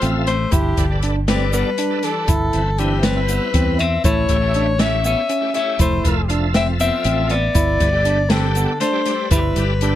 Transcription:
Already playing: F3 A3 F4 A4 C5 E5
0.01 A1 C4, closed hi-hat, shaker
0.27 A3 C5, closed hi-hat
0.52 G1 D3 E4 G4, kick, closed hi-hat, shaker
0.77 G1 G3 D4 A4 B4, kick, closed hi-hat, shaker
0.90 G3 D4 A4 B4
1.02 D4, closed hi-hat
1.27 G3 C4 D4 A4 B4 D5, snare, closed hi-hat
1.53 G3 B3 B4, closed hi-hat, shaker
1.78 D4, closed hi-hat, shaker
1.90 G3 D4 A4 B4
2.03 E3 G3 D4 A4 B4, closed hi-hat
2.28 G1 E4, kick, closed hi-hat, shaker
2.53 G1 C4 E4 B4, closed hi-hat
2.78 E3 C4 D4 E4 G4 B4, closed hi-hat, shaker
3.03 G3 C4 B4, snare, closed hi-hat
3.16 C4 E4 B4
3.28 B3, closed hi-hat, shaker
3.54 E2 C4, kick, closed hi-hat, shaker
3.79 C4 E5, closed hi-hat
4.04 A1 A3 E4 C#5, kick, closed hi-hat, shaker
4.29 A1 A3 E4 G4 C#5, kick, closed hi-hat, shaker
4.40 A3 E4 G4 E5
4.54 D4, closed hi-hat
4.78 A3 C#4 E4 G4 C#5 E5, snare, closed hi-hat
5.04 B3 C#4 E5, closed hi-hat, shaker
5.29 C#4, closed hi-hat, shaker
5.41 A3 E4 G4 C#5
5.53 A3 C#4 E4 G4 C#5 E5, closed hi-hat
5.79 F1 A3 E4 C5, kick, closed hi-hat, shaker
6.04 F1 F3 F4 A4 E5, kick, closed hi-hat, shaker
6.28 F3 D4 F4 A4 E5, closed hi-hat
6.54 C4 E5, snare, closed hi-hat
6.66 F3 F4 A4 E5
6.80 B3 C4 E5, closed hi-hat, shaker
7.04 A1 C4, closed hi-hat, shaker
7.29 B3 D5, closed hi-hat
7.55 G1 E4, kick, closed hi-hat, shaker
7.80 G1 G3 G4 A4 B4, kick, closed hi-hat, shaker
7.92 G3 G4 A4 B4
8.05 D4, closed hi-hat
8.30 D3 G3 C4 G4 A4 B4, snare, closed hi-hat
8.55 B3, closed hi-hat, shaker
8.80 A3 D4 C5, snare, closed hi-hat, shaker
8.92 G3 G4 A4 B4
9.05 G3 G4 A4 B4, snare, closed hi-hat
9.31 G1 G3 E4 B4, kick, closed hi-hat, shaker
9.56 G1 G3 G4 A4 B4, closed hi-hat, shaker
9.81 G3 D4 G4 A4 B4, closed hi-hat, shaker

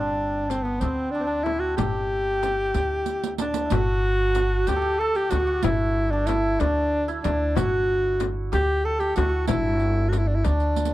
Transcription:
Already playing: G1 C4 D4 E4
0.00 D4
0.49 C4, riq, frame drum
0.63 B3
0.80 D2 C4, riq, frame drum
1.11 D4
1.20 C4 D4
1.27 D4
1.44 E4, frame drum
1.60 F#4
1.77 G1 G4, riq, frame drum
2.43 riq, frame drum
2.74 D2, riq, frame drum
3.06 riq
3.23 riq
3.38 D4, riq, frame drum
3.54 riq
3.65 E4
3.70 G1 F#4, riq, frame drum
4.35 F#4, riq, frame drum
4.67 D2 G4, riq, frame drum
4.76 A4
4.82 G4
4.99 A4
5.15 G4, riq
5.31 D2 F#4, riq, frame drum
5.40 G4
5.47 F#4
5.63 G1 E4, riq, frame drum
6.11 D4
6.27 E4, riq, frame drum
6.60 D2 D4, riq, frame drum
7.08 E4, riq
7.24 D2 D4, riq, frame drum
7.56 G1 F#4, riq, frame drum
8.20 riq, frame drum
8.52 D2 G4, riq, frame drum
8.85 A4
8.99 G4, riq
9.16 D2 F#4, riq, frame drum
9.22 E4
9.29 F#4
9.48 G1 E4, riq, frame drum
9.79 riq
10.09 F#4, frame drum
10.13 riq
10.17 E4
10.28 D4
10.35 E4
10.44 D2 D4, riq, frame drum
10.60 riq
10.76 riq
10.85 riq

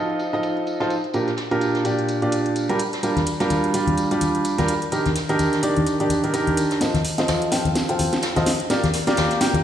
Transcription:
Already playing: F3 D#4 F4 A4 D#5
0.10 closed hi-hat
0.19 closed hi-hat, tambourine
0.33 F3 D#4 F4 A4 D#5, closed hi-hat
0.43 closed hi-hat, tambourine
0.57 closed hi-hat
0.67 closed hi-hat, tambourine
0.80 F3 D#4 F4 A4 C5, snare, closed hi-hat
0.90 closed hi-hat, tambourine
1.04 closed hi-hat
1.13 A#2 D4 F4 G4 A#4, closed hi-hat, tambourine
1.27 snare, closed hi-hat
1.36 snare, closed hi-hat, tambourine
1.51 A#2 D4 F4 G4 A#4, closed hi-hat
1.61 closed hi-hat, tambourine
1.75 snare, closed hi-hat
1.85 A#2 D4 F4 G4 D5, closed hi-hat, tambourine
1.99 closed hi-hat
2.09 closed hi-hat, tambourine
2.22 A#2 D4 F4 G4 D5, closed hi-hat
2.32 closed hi-hat, tambourine
2.46 closed hi-hat
2.56 closed hi-hat, tambourine
2.69 G3 D4 F4 G4 A#4, closed hi-hat
2.79 closed hi-hat, tambourine
2.93 snare, closed hi-hat
3.03 G3 D4 F4 G4 A#4, closed hi-hat, tambourine
3.17 snare, closed hi-hat, high conga
3.26 closed hi-hat, tambourine
3.40 G3 D4 F4 G4 A#4, snare, closed hi-hat, tambourine
3.50 closed hi-hat, tambourine, high conga
3.64 closed hi-hat
3.74 G3 D4 F4 G4 D5, closed hi-hat, tambourine
3.87 closed hi-hat, tambourine, high conga
3.97 closed hi-hat, tambourine
4.11 G3 D4 F4 G4 D5, closed hi-hat
4.21 closed hi-hat, tambourine, high conga
4.35 closed hi-hat, tambourine
4.45 closed hi-hat, tambourine
4.58 G3 D4 F4 G4 A#4, snare, closed hi-hat, tambourine, high conga
4.68 closed hi-hat, tambourine
4.82 closed hi-hat, tambourine
4.92 D#3 D4 D#4 G4 A#4, closed hi-hat, tambourine
5.06 snare, closed hi-hat, tambourine, high conga
5.15 snare, closed hi-hat, tambourine
5.29 D#3 D4 D#4 G4 A#4, closed hi-hat, tambourine
5.39 closed hi-hat, tambourine, high conga
5.53 snare, closed hi-hat
5.62 D#3 D4 D#4 G4 D5, closed hi-hat, tambourine
5.76 closed hi-hat, tambourine, high conga
5.86 closed hi-hat, tambourine
5.99 D#3 D4 D#4 G4 D5, closed hi-hat, tambourine
6.09 closed hi-hat, tambourine, high conga
6.24 D#3 D4 D#4 G4 A#4, closed hi-hat, tambourine
6.34 D#3 D4 D#4 G4 A#4, closed hi-hat, tambourine
6.47 closed hi-hat, tambourine, high conga
6.57 closed hi-hat, tambourine
6.71 snare, closed hi-hat, tambourine
6.81 F1 F3 F4 A4 C5 D#5, snare, closed hi-hat, tambourine
6.94 snare, closed hi-hat, high conga
7.04 open hi-hat, tambourine
7.18 F1 F3 F4 A4 C5 D#5, snare, closed hi-hat, tambourine
7.28 snare, closed hi-hat, tambourine, high conga
7.42 closed hi-hat
7.51 F3 F4 A4 C5 G5, snare, open hi-hat, tambourine
7.65 F1, closed hi-hat, tambourine, high conga
7.75 snare, closed hi-hat, tambourine
7.89 F3 F4 A4 C5 G5, closed hi-hat
7.99 C2, open hi-hat, tambourine, high conga
8.13 snare, closed hi-hat, tambourine
8.22 snare, closed hi-hat, tambourine
8.36 F1 F3 F4 A4 C5 D#5, snare, closed hi-hat, tambourine, high conga
8.46 snare, open hi-hat, tambourine
8.60 closed hi-hat, tambourine
8.70 A#1 A#3 F4 G4 A#4 D5, snare, closed hi-hat, tambourine
8.84 snare, closed hi-hat, high conga
8.94 snare, open hi-hat, tambourine
9.07 A#1 A#3 F4 G4 A#4 D5, snare, closed hi-hat, tambourine
9.17 snare, closed hi-hat, tambourine, high conga
9.31 snare, closed hi-hat
9.41 A#3 F4 G4 A#4 G5, snare, open hi-hat, tambourine
9.54 A#1, closed hi-hat, tambourine, high conga

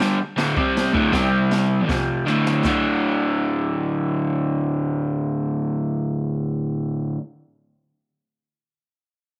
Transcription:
Already playing: G2
0.00 D3 G3, snare
0.19 muted overdriven electric guitar stroke
0.37 D2 A2 D3, snare, crash
0.56 C3 G3 C4, kick
0.77 snare, crash
0.93 D2 A2 D3, kick
1.13 C3 G3 C4, kick, snare, crash
1.51 snare, crash
1.89 F2 C3 F3, kick, snare, crash
2.26 D2 A2 D3, snare
2.47 snare
2.63 D2 A2, kick, snare, splash
2.68 D3

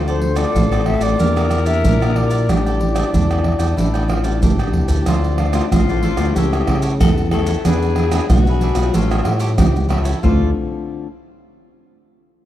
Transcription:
Already playing: D2 D3 A3 C4 F4 A4
0.08 A4 C5 D5, pandeiro, maracas
0.21 muted cavaquinho stroke, pandeiro
0.35 A3 C4 F4 A4 C5 D5, pandeiro, tamborim, maracas
0.54 A1 A2 F4 A4 C5 D5, pandeiro, maracas, surdo
0.72 A4 C5 D5, pandeiro, tamborim, maracas
0.86 A3 C4 F4 E5, pandeiro, tamborim
1.00 A1 A4 C5 D5, pandeiro, tamborim, maracas
1.19 E2 E3 A#3 D4 G4 A#4 D5 E5, pandeiro, maracas, surdo
1.36 A#4 D5 E5, pandeiro, tamborim, maracas
1.51 muted cavaquinho stroke, pandeiro, tamborim, maracas
1.65 A#3 D4 G4 A#4 D5 E5, pandeiro, maracas
1.84 A#2 E3 G4 A#4 D5 E5, pandeiro, maracas, surdo
2.01 A#3 D4 G4 A#4 D5 E5, pandeiro, tamborim, maracas
2.16 D5, pandeiro, tamborim
2.30 A#4 D5 E5, pandeiro, maracas
2.48 A1 A2 G3 D4 E4 G4 A4 D5 G5, pandeiro, tamborim, maracas, surdo
2.66 A4 D5 G5, pandeiro, maracas
2.80 muted cavaquinho stroke, pandeiro
2.94 G3 D4 E4 A4 D5 G5, pandeiro, tamborim, maracas
3.13 E2 E3 D4 A4 D5 G5, pandeiro, maracas, surdo
3.30 A4 D5 G5, pandeiro, tamborim, maracas
3.44 G3 D4 E4, pandeiro, tamborim
3.59 E2 A4 D5 G5, pandeiro, tamborim, maracas
3.77 A1 A2 G3 D4 E4 A4 D5 G5, pandeiro, maracas, surdo
3.94 A4 D5 G5, pandeiro, tamborim, maracas
4.08 F4, muted cavaquinho stroke, pandeiro, tamborim
4.24 G3 D4 E4 A4 D5 G5, pandeiro, maracas
4.42 G1 E3 D4 G4 A4 D5 G5, pandeiro, maracas, surdo
4.59 A1 G3 D4 E4 A4 D5 G5, pandeiro, tamborim, maracas
4.73 C2, surdo, pandeiro
4.88 D2 A4 D5 G5, pandeiro, maracas, surdo
5.06 D2 D3 A3 C4 D4 F4 A4 C5 D5, pandeiro, tamborim, maracas, surdo
5.24 pandeiro, maracas
5.38 F4 A4 C5 D5, pandeiro, tamborim
5.53 A3 C4 F4 A4 C5 D5, pandeiro, tamborim, maracas
5.71 A1 A2 F4, pandeiro, tamborim, maracas, surdo
5.89 A4 C5 D5, pandeiro, maracas
6.02 F4 A4 C5 D5, pandeiro
6.17 D2 G3 A3 E4 A4 C5 D5, pandeiro, tamborim, maracas
6.35 C#2 C#3 G4 A4 C#5 E5, pandeiro, maracas, surdo
6.53 A4 C#5 E5, pandeiro, tamborim, maracas
6.67 C#3 G3 A3 E4 G4 A4 C#5 E5, pandeiro, tamborim, surdo
6.82 G4 A4 C#5 E5, pandeiro, maracas
7.00 E2 C#3 A4, pandeiro, tamborim, maracas, surdo
7.18 pandeiro, maracas
7.31 G3 A3 E4 G4 A4 C#5 E5, pandeiro, tamborim
7.46 A4 C#5 E5, pandeiro, maracas
7.65 E2 E3 B3 D4 G#4 B4 E5, pandeiro, tamborim, maracas, surdo
7.82 pandeiro, maracas
7.96 D4 G#4 B4 E5, pandeiro, tamborim
8.11 B3 D4 G#4 B4 E5, pandeiro, tamborim, maracas
8.29 B1 B2 F#4, pandeiro, tamborim, maracas, surdo
8.47 G#4 B4 E5, pandeiro, maracas
8.61 D4 G#4 B4 E5, pandeiro
8.75 B1 G3 C#4 F4 G#4 B4 E5, pandeiro, tamborim, maracas
8.94 A1 A2 F4 G4 A4 C#5 E5, pandeiro, maracas, surdo
9.11 A4 C#5 E5, pandeiro, tamborim, maracas
9.24 A2 G3 C#4 F4 G4 A4 C#5 E5, pandeiro, tamborim
9.39 G4 A4 C#5 E5, pandeiro, maracas
9.58 C#2 E3 G4, pandeiro, tamborim, maracas, surdo
9.76 pandeiro, maracas
9.89 G3 C#4 E4 F4 G4 A4 C#5 E5, pandeiro, tamborim
10.04 A4 C#5 E5, pandeiro, maracas
10.22 D2 D3 A3 C4 F4 A4 C5 D5, surdo

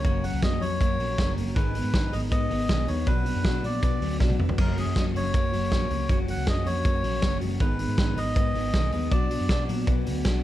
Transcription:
Already playing: A#3 A#4
0.04 F#1 F#2 C#3 F#3 A#3 C#4 A#4 C#5, kick, hi-hat pedal, ride
0.23 F#3 A#3 C#4 A#4 F#5, open hi-hat
0.33 C#2
0.42 F#2 C#3 F#3 A#3 B3 C#4 A#4 D#5, kick, snare, hi-hat pedal, ride
0.53 C#4
0.61 F2 F#3 A#3 C#4 A#4 C#5, open hi-hat
0.80 F#2 F#3 A#3 C#4 A#4, kick, hi-hat pedal, ride
0.99 A#1 F#3 A#3 C#4 A#4, open hi-hat
1.17 F#1 F#2 C#3 F#3 A#3 C#4 A#4, kick, snare, hi-hat pedal, ride
1.37 F#1 F#3 A#3 C#4 A#4, open hi-hat
1.55 G#1 G#2 D#3 G#3 B3 D#4 G#4 B4, kick, hi-hat pedal, ride
1.75 D#3 G#3 B3 D#4 G#4, open hi-hat
1.84 G#2
1.94 G#2 D#3 G#3 B3 D#4 G#4, kick, snare, hi-hat pedal, ride
2.13 G#1 D#3 G#3 B3 D#4 G#4 D#5, open hi-hat
2.31 G#2 G#3 B3 D#4 G#4 D#5, kick, hi-hat pedal, ride
2.50 G#1 D#3 G#3 B3 D#4 G#4, open hi-hat
2.68 B1 G#2 D#3 G#3 B3 D#4 G#4, kick, snare, hi-hat pedal, ride
2.87 D#2 G#3 B3 D#4 G#4 C#5, open hi-hat
3.07 B1 B2 F#3 B3 D4 F#4 B4, kick, hi-hat pedal, ride
3.25 F#3 B3 D4 F#4, open hi-hat
3.36 F#2
3.44 B2 F#3 B3 D4 F#4, kick, snare, hi-hat pedal, ride
3.63 A#2 F#3 B3 D4 F#4 D5, open hi-hat
3.82 B2 F#3 B3 D4 F#4, kick, hi-hat pedal, ride
4.01 D2 F#3 B3 D4 F#4, open hi-hat
4.20 B1 B2 F#3 B3 D4 F#4, kick, snare
4.30 high tom
4.39 F1 B3 D4 F#4, mid tom
4.49 floor tom
4.58 F#1 F#2 C#3 F#3 A#3 C#4 F#4 A#4, kick, crash
4.77 F#3 A#3 C#4 F#4 G#4, open hi-hat
4.87 F#2
4.96 F#2 C#3 F#3 A#3 C#4 F#4 D#5, kick, snare, hi-hat pedal, ride
5.14 F#1 F#3 A#3 C#4 F#4 C#5, open hi-hat
5.34 F#2 F#3 A#3 C#4 F#4, kick, hi-hat pedal, ride
5.52 F#1 F#3 A#3 C#4 F#4, open hi-hat
5.71 A#1 F#2 C#3 F#3 A#3 C#4 F#4, kick, snare, hi-hat pedal, ride
5.90 C#2 F#3 A#3 C#4, open hi-hat
6.09 F#1 F#2 C#3 F#3 A#3 C#4 F#4 C#5, kick, hi-hat pedal, ride
6.28 F#3 A#3 C#4 F#4 F#5, open hi-hat
6.37 C#2
6.47 F#2 C#3 F#3 A#3 C#4 F#4 D#5, kick, snare, hi-hat pedal, ride
6.66 F2 A#3 C#4 F#4 C#5, open hi-hat
6.70 F#3
6.85 F#2 F#3 A#3 C#4 F#4, kick, hi-hat pedal, ride
7.03 A#1 F#3 A#3 C#4 F#4, open hi-hat
7.22 F#1 F#2 C#3 F#3 A#3 C#4 F#4, kick, snare, hi-hat pedal, ride
7.41 F#1 F#3 G#3 A#3 C#4 F#4, open hi-hat
7.51 A#3
7.60 G#1 G#2 D#3 G#3 B3 D#4 G#4 B4, kick, hi-hat pedal, ride
7.79 D#3 G#3 B3 D#4 G#4, open hi-hat
7.88 G#2
7.98 G#2 D#3 G#3 B3 D#4 G#4, kick, snare, hi-hat pedal, ride
8.17 G#1 D#3 G#3 B3 D#4 G#4 D#5, open hi-hat
8.36 G#2 G#3 B3 D#4 G#4, kick, hi-hat pedal, ride
8.54 G#1 D#3 G#3 B3 D#4 G#4, open hi-hat
8.74 B1 G#2 D#3 G#3 B3 D#4 G#4, kick, snare, hi-hat pedal, ride
8.92 D#2 G#3 B3 D#4 G#4 D#5, open hi-hat
9.11 B1 B2 F#3 B3 D4 F#4 D5, kick, hi-hat pedal, ride
9.30 F#3 B3 D4 F#4, open hi-hat
9.40 F#2
9.49 B2 F#3 B3 D4 F#4, kick, snare, ride
9.69 A#2 F#3 B3 D4 F#4, open hi-hat
9.87 B2 F#3 B3 D4 F#4, kick, hi-hat pedal, ride
10.06 D2 F#3 B3 D4 F#4, open hi-hat
10.25 B1 B2 F#3 B3 D4 F#4, kick, snare, hi-hat pedal, ride

